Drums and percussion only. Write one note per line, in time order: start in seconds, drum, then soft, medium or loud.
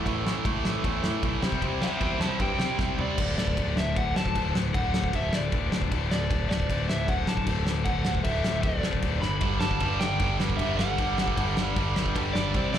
0.06 kick medium
0.06 crash medium
0.27 snare loud
0.45 kick loud
0.45 crash medium
0.65 snare loud
0.84 kick loud
0.84 crash medium
1.04 snare loud
1.23 kick loud
1.23 crash medium
1.43 snare loud
1.52 kick medium
1.62 kick loud
1.62 crash medium
1.82 snare loud
2.01 kick loud
2.01 crash medium
2.21 snare loud
2.40 kick loud
2.40 crash medium
2.60 snare loud
2.79 kick loud
2.79 snare medium
2.99 floor tom loud
3.18 kick loud
3.18 crash loud
3.18 crash medium
3.38 snare loud
3.47 kick loud
3.57 kick loud
3.57 crash medium
3.77 snare loud
3.96 kick loud
3.96 crash medium
4.16 snare loud
4.26 kick loud
4.35 kick loud
4.35 crash medium
4.55 snare loud
4.74 kick loud
4.74 crash medium
4.94 snare loud
5.04 kick loud
5.13 kick loud
5.13 crash medium
5.33 snare loud
5.52 kick loud
5.52 crash medium
5.72 snare loud
5.82 kick loud
5.92 kick loud
5.92 crash medium
6.11 snare loud
6.31 kick loud
6.31 crash medium
6.51 snare loud
6.60 kick medium
6.70 kick loud
6.70 crash medium
6.90 snare loud
7.08 kick loud
7.08 crash medium
7.27 snare loud
7.37 kick loud
7.47 kick loud
7.47 crash medium
7.67 snare loud
7.85 kick loud
7.85 crash medium
8.05 snare loud
8.15 kick loud
8.24 kick loud
8.24 crash medium
8.44 snare loud
8.63 kick loud
8.63 crash medium
8.83 snare loud
8.93 kick loud
9.02 kick loud
9.02 crash medium
9.22 snare medium
9.41 kick loud
9.41 crash medium
9.61 snare loud
9.71 kick loud
9.80 kick loud
9.80 crash medium
10.01 snare loud
10.20 kick loud
10.20 crash medium
10.40 snare loud
10.50 kick loud
10.59 kick loud
10.59 crash medium
10.79 snare loud
10.98 kick loud
10.98 crash medium
11.18 snare loud
11.28 kick medium
11.37 kick loud
11.37 crash medium
11.57 snare loud
11.76 kick loud
11.76 crash medium
11.96 snare loud
12.06 kick loud
12.16 kick loud
12.16 crash medium
12.35 snare loud
12.54 kick loud
12.54 crash medium
12.74 snare loud